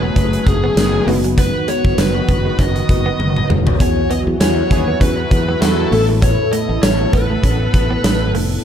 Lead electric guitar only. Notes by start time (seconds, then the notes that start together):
Already playing: B4
0.48 G#4
1.39 B4
1.69 C#5
1.99 B4
2.60 D#5
3.81 C#5
4.11 D#5
4.41 C#5
5.01 B4
5.62 A4
6.22 C#5
6.53 D#5
6.83 C#5
7.13 B4